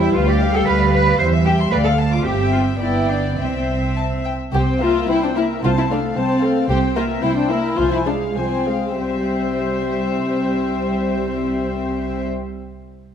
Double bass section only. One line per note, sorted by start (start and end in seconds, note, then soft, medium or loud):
0.15 0.58 D2 medium
0.67 1.11 D2 soft
1.19 1.63 E2 medium
1.71 2.16 D2 soft
2.24 2.77 G1 medium
2.80 3.37 G1 soft
3.38 4.32 C2 soft
4.54 4.99 C2 medium
5.63 6.08 C2 medium
6.70 7.14 C2 medium
7.78 8.26 C2 medium
8.98 12.24 C2 soft